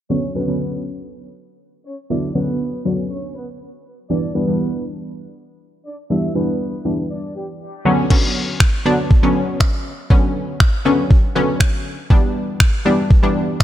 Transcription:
0.10 0.30 D3 medium
0.10 0.30 F#3 medium
0.10 0.30 B3 medium
0.10 0.30 C#4 medium
0.10 0.32 C#4 medium
0.10 0.32 C#5 medium
0.35 0.45 D3 medium
0.35 0.45 F#3 medium
0.35 0.45 B3 medium
0.35 0.83 B3 medium
0.35 0.45 C#4 medium
0.35 0.82 B4 medium
0.47 1.28 D3 medium
0.47 1.28 F#3 medium
0.47 1.28 B3 medium
0.47 1.28 C#4 medium
1.86 1.97 C#4 medium
1.86 1.96 C#5 medium
2.10 2.30 D3 medium
2.10 2.30 F#3 medium
2.10 2.30 B3 medium
2.10 2.32 D4 medium
2.10 2.30 E4 medium
2.10 2.32 D5 medium
2.35 2.75 D3 medium
2.35 2.75 F#3 medium
2.35 2.75 B3 medium
2.35 2.83 B3 medium
2.35 2.75 C#4 medium
2.35 2.82 B4 medium
2.85 3.65 D3 medium
2.85 3.65 F#3 medium
2.85 3.65 B3 medium
2.85 3.65 C#4 medium
3.10 3.32 C#4 medium
3.10 3.32 C#5 medium
3.35 3.47 B3 medium
3.35 3.46 B4 medium
4.10 4.30 E3 medium
4.10 4.30 G3 medium
4.10 4.30 B3 medium
4.10 4.30 D4 medium
4.10 4.32 D4 medium
4.10 4.32 D5 loud
4.35 4.45 E3 medium
4.35 4.45 G3 medium
4.35 4.45 B3 medium
4.35 4.83 B3 medium
4.35 4.45 D4 medium
4.35 4.82 B4 medium
4.47 5.28 E3 medium
4.47 5.28 G3 medium
4.47 5.28 B3 medium
4.47 5.28 D4 medium
5.85 5.97 D4 medium
5.85 5.96 D5 medium
6.10 6.30 E3 medium
6.10 6.30 G3 medium
6.10 6.30 B3 medium
6.10 6.30 D4 medium
6.10 6.32 E4 medium
6.10 6.32 E5 medium
6.35 6.75 E3 medium
6.35 6.75 G3 medium
6.35 6.75 B3 medium
6.35 6.83 B3 medium
6.35 6.75 D4 medium
6.35 6.82 B4 medium
6.85 7.65 E3 medium
6.85 7.65 G3 medium
6.85 7.65 B3 medium
6.85 7.65 D4 medium
7.10 7.32 D4 medium
7.10 7.32 D5 medium
7.35 7.47 G3 medium
7.35 7.46 G4 medium
7.85 8.05 D3 loud
7.85 8.05 F#3 medium
7.85 8.05 B3 medium
7.85 8.05 C#4 loud
8.10 8.70 D3 medium
8.10 8.70 F#3 medium
8.10 8.70 B3 medium
8.10 8.71 C#4 loud
8.10 kick loud
8.10 crash medium
8.60 finger snap loud
8.60 kick loud
8.85 9.15 D3 medium
8.85 9.15 F#3 medium
8.85 9.16 B3 medium
8.85 9.16 D4 loud
9.11 kick loud
9.23 9.93 D3 medium
9.23 9.93 F#3 medium
9.23 9.93 B3 medium
9.23 9.93 C#4 loud
9.60 finger snap loud
9.60 kick loud
10.10 10.70 D3 medium
10.10 10.70 F#3 medium
10.10 10.70 B3 medium
10.10 10.71 C#4 loud
10.10 kick loud
10.60 finger snap loud
10.60 kick loud
10.85 11.25 D3 medium
10.85 11.25 F#3 medium
10.85 11.25 B3 medium
10.85 11.26 C#4 loud
11.11 kick loud
11.35 11.95 D3 medium
11.35 11.95 F#3 medium
11.35 11.96 B3 medium
11.35 11.96 C#4 loud
11.60 finger snap loud
11.60 kick loud
12.10 12.70 E3 medium
12.10 12.70 G3 medium
12.10 12.70 B3 medium
12.10 12.70 D4 loud
12.10 kick loud
12.60 finger snap loud
12.60 kick loud
12.85 13.15 E3 medium
12.85 13.15 G3 medium
12.85 13.15 B3 medium
12.85 13.16 D4 loud
13.11 kick loud
13.23 13.64 E3 medium
13.23 13.64 G3 medium
13.23 13.64 B3 medium
13.23 13.64 D4 loud
13.60 finger snap loud
13.60 kick loud

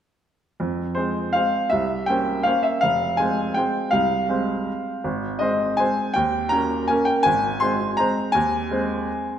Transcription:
0.60 0.95 F2 soft
0.95 1.31 G#3 soft
0.95 1.31 C4 soft
0.95 1.34 C5 medium
1.33 1.68 G#3 soft
1.33 1.68 C4 soft
1.33 1.69 C5 soft
1.33 1.71 F5 medium
1.70 2.07 C2 soft
1.70 2.07 E5 medium
2.06 2.42 A#3 soft
2.06 2.42 C#4 soft
2.06 2.43 C5 soft
2.06 2.44 G5 medium
2.43 2.79 A#3 soft
2.43 2.79 C#4 soft
2.43 2.79 C5 soft
2.43 2.63 F5 medium
2.63 2.82 E5 medium
2.81 3.18 F1 soft
2.81 3.18 F5 medium
3.17 3.53 G#3 soft
3.17 3.53 C4 soft
3.17 3.54 C5 soft
3.17 3.56 G#5 medium
3.54 3.90 G#3 soft
3.54 3.90 C4 soft
3.54 3.90 C5 soft
3.54 3.92 G5 medium
3.91 4.28 C2 soft
3.91 5.03 F5 medium
4.29 5.00 G#3 soft
4.29 5.00 C4 soft
4.29 5.01 C5 soft
5.04 5.40 G#1 soft
5.39 5.75 G#3 soft
5.39 5.75 C4 soft
5.39 5.76 C5 soft
5.39 5.78 D#5 medium
5.77 6.12 G#3 soft
5.77 6.12 C4 soft
5.77 6.12 C5 soft
5.77 6.15 G#5 medium
6.14 6.51 D#2 soft
6.14 6.51 G5 medium
6.49 6.85 A#3 soft
6.49 6.85 C#4 soft
6.49 6.86 A#4 soft
6.49 6.88 A#5 medium
6.88 7.22 A#3 soft
6.88 7.22 C#4 soft
6.88 7.22 A#4 soft
6.88 7.07 G#5 medium
7.05 7.24 G5 medium
7.23 7.60 G#1 soft
7.23 7.60 G#5 medium
7.60 7.95 G#3 soft
7.60 7.95 C4 soft
7.60 7.96 C5 soft
7.60 7.98 C6 medium
7.97 8.32 G#3 soft
7.97 8.32 C4 soft
7.97 8.32 C5 soft
7.97 8.34 A#5 medium
8.32 8.69 D#2 medium
8.32 9.39 G#5 medium
8.71 9.39 G#3 soft
8.71 9.39 C4 soft
8.71 9.39 C5 soft

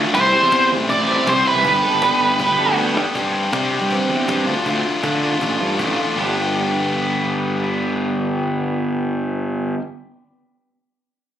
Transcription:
0.00 0.13 D3 medium
0.00 0.15 A3 medium
0.00 0.14 D4 medium
0.00 0.13 F4 medium
0.14 0.31 C2 loud
0.14 0.52 C3 medium
0.14 0.51 E3 medium
0.14 0.36 G3 loud
0.14 0.34 C4 loud
0.14 0.32 E4 medium
0.14 0.67 C5 loud
0.14 cajon bass loud
0.32 0.50 E3 medium
0.32 0.53 G3 medium
0.32 0.53 C4 medium
0.32 0.54 E4 medium
0.32 0.51 G4 loud
0.32 cajon slap soft
0.42 0.72 E2 medium
0.52 0.88 E3 medium
0.52 0.90 G3 medium
0.52 0.90 C4 medium
0.52 0.90 E4 loud
0.52 0.77 G4 medium
0.52 cajon bass loud
0.52 cajon slap loud
0.70 0.95 A1 medium
0.89 1.26 C3 loud
0.89 1.25 E3 loud
0.89 1.10 G3 loud
0.89 1.08 C4 loud
0.89 1.06 E4 loud
0.89 1.28 D5 loud
0.89 cajon bass loud
0.99 1.15 A1 loud
1.07 1.25 E3 medium
1.07 1.27 G3 medium
1.07 1.27 C4 medium
1.07 1.28 E4 medium
1.07 1.27 G4 loud
1.26 1.43 C2 loud
1.26 1.63 E3 medium
1.26 1.47 G3 medium
1.26 1.45 C4 medium
1.26 1.44 E4 medium
1.26 1.52 G4 medium
1.26 1.47 C5 loud
1.26 cajon bass loud
1.26 cajon slap loud
1.45 1.65 G3 medium
1.45 1.64 C4 medium
1.45 1.63 E4 medium
1.45 2.74 B4 medium
1.45 cajon slap soft
1.55 1.63 C2 loud
1.63 1.81 G1 loud
1.63 2.01 G2 medium
1.63 2.02 D3 medium
1.63 1.84 G3 loud
1.63 1.83 B3 loud
1.63 1.82 D4 medium
1.63 1.81 G4 loud
1.63 cajon bass loud
1.82 2.00 G3 medium
1.82 2.01 B3 medium
1.82 2.02 D4 medium
1.82 2.03 G4 medium
1.82 2.02 A4 medium
1.82 cajon slap soft
1.93 2.09 G1 medium
2.01 2.39 G3 medium
2.01 2.39 B3 medium
2.01 2.40 D4 medium
2.01 2.40 G4 medium
2.01 2.27 A4 medium
2.01 cajon bass loud
2.01 cajon slap loud
2.20 2.45 G1 medium
2.20 cajon slap soft
2.38 2.76 G2 medium
2.38 2.77 D3 medium
2.38 2.59 G3 loud
2.38 2.58 B3 loud
2.38 2.58 D4 loud
2.38 2.56 G4 loud
2.38 cajon bass loud
2.50 2.65 G1 loud
2.58 2.75 G3 medium
2.58 2.76 B3 medium
2.58 2.77 D4 medium
2.58 2.78 G4 medium
2.58 2.77 A4 loud
2.68 2.97 D2 loud
2.76 2.97 G3 medium
2.76 2.96 B3 loud
2.76 2.95 D4 medium
2.76 2.94 G4 medium
2.76 3.02 A4 medium
2.95 3.04 G2 medium
2.95 3.13 G3 medium
2.95 3.14 B3 medium
2.95 3.14 D4 medium
2.95 3.13 G4 medium
2.95 cajon slap soft
3.13 3.70 G2 medium
3.13 3.47 G2 medium
3.13 3.71 D3 medium
3.13 3.50 G3 medium
3.13 3.51 C4 medium
3.13 3.52 D4 medium
3.13 3.52 G4 medium
3.13 cajon bass loud
3.51 3.77 C3 loud
3.51 3.72 G3 medium
3.51 3.71 C4 medium
3.51 3.71 D4 medium
3.51 3.69 G4 medium
3.51 cajon bass loud
3.51 cajon slap loud
3.70 3.90 G3 medium
3.70 3.90 C4 medium
3.70 3.91 D4 medium
3.70 3.91 G4 medium
3.70 cajon slap soft
3.81 3.97 G2 medium
3.90 4.45 G2 medium
3.90 4.46 D3 medium
3.90 4.26 G3 medium
3.90 4.27 C4 medium
3.90 4.29 D4 loud
3.90 4.29 G4 medium
3.90 cajon bass medium
4.09 4.25 E2 medium
4.09 4.47 G4 medium
4.09 cajon slap soft
4.27 4.44 G2 medium
4.27 4.45 G3 medium
4.27 4.46 C4 medium
4.27 4.47 D4 medium
4.27 4.46 G4 medium
4.27 cajon bass loud
4.27 cajon slap loud
4.46 4.55 D2 medium
4.46 4.64 D3 medium
4.46 4.65 A3 medium
4.46 4.66 D4 medium
4.46 4.67 F4 medium
4.65 4.82 D2 medium
4.65 5.01 D3 medium
4.65 5.03 A3 medium
4.65 5.03 D4 medium
4.65 5.04 F4 loud
4.65 cajon bass loud
4.85 cajon slap soft
5.03 5.39 D3 medium
5.03 5.34 D3 medium
5.03 5.23 A3 medium
5.03 5.22 D4 medium
5.03 5.20 F4 medium
5.03 cajon bass loud
5.21 5.97 D3 medium
5.21 5.41 A3 medium
5.21 5.41 D4 medium
5.21 5.42 F4 medium
5.32 5.56 A1 medium
5.41 5.77 D3 medium
5.41 5.78 A3 medium
5.41 5.79 D4 medium
5.41 5.80 F4 medium
5.41 cajon bass loud
5.60 5.77 G2 medium
5.60 6.18 F4 medium
5.78 5.96 A1 medium
5.78 6.16 D3 medium
5.78 5.98 A3 medium
5.78 5.97 D4 medium
5.78 5.95 F4 medium
5.78 cajon bass loud
5.96 6.16 D3 medium
5.96 6.17 A3 soft
5.96 6.16 D4 medium
5.96 6.15 F4 medium
5.96 cajon slap soft
6.16 9.74 G1 medium
6.16 9.78 G2 medium
6.16 9.79 D3 medium
6.16 9.80 G3 medium
6.16 9.80 B3 medium
6.16 9.81 D4 medium
6.16 9.82 G4 medium

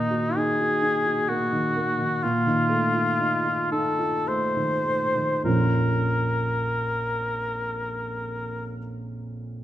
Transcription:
0.00 2.19 A#2 soft
0.00 1.53 D#3 soft
0.00 0.26 A#3 soft
0.00 0.38 D#4 medium
0.11 0.50 F#4 soft
0.36 0.74 D#4 soft
0.36 1.30 G#4 medium
0.60 0.97 F#4 soft
0.82 1.19 D#4 soft
1.06 1.43 F#4 soft
1.28 1.66 A#3 soft
1.28 2.25 F#4 soft
1.53 1.90 D#3 soft
1.76 2.13 A#3 soft
1.98 2.22 D#3 soft
2.23 5.42 A#2 soft
2.23 3.71 F4 medium
2.47 2.84 D#3 soft
2.69 3.08 A3 soft
2.94 3.34 F4 soft
3.20 3.61 D#4 soft
3.45 3.88 F4 soft
3.72 4.16 D#4 soft
3.72 4.29 A4 medium
3.99 4.44 F4 soft
4.27 4.74 A3 soft
4.27 5.44 C5 medium
4.56 5.05 D#3 soft
4.85 5.33 A3 soft
5.15 5.45 D#3 soft
5.44 8.78 A#1 soft
5.44 8.78 F2 soft
5.44 8.79 F3 soft
5.44 8.79 A#3 soft
5.44 8.79 C#4 soft
5.44 8.80 F4 soft
5.44 8.79 A#4 soft

